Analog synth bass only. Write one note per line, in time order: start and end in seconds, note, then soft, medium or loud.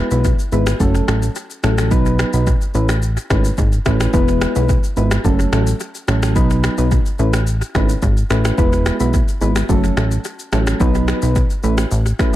0.11 0.33 B1 medium
0.52 0.74 G#1 medium
0.80 1.02 F#1 loud
1.08 1.29 A1 medium
1.63 1.93 A1 loud
1.91 2.24 B1 loud
2.33 2.55 B1 medium
2.75 3.18 A1 loud
3.30 3.52 G#1 medium
3.58 3.79 G#1 medium
3.86 4.07 A1 medium
4.14 4.46 E1 loud
4.56 4.77 B1 medium
4.97 5.18 G#1 medium
5.25 5.46 F#1 loud
5.52 5.74 A1 medium
6.08 6.37 A1 loud
6.36 6.69 B1 loud
6.78 7.00 B1 medium
7.19 7.62 A1 loud
7.75 7.96 G#1 medium
8.02 8.24 G#1 medium
8.30 8.52 A1 medium
8.58 8.91 E1 loud
9.00 9.22 B1 medium
9.41 9.63 G#1 medium
9.69 9.91 F#1 loud
9.97 10.18 A1 medium
10.52 10.74 A1 loud
10.80 11.13 B1 loud
11.22 11.44 B1 medium
11.64 11.85 A1 loud
11.91 12.13 A1 loud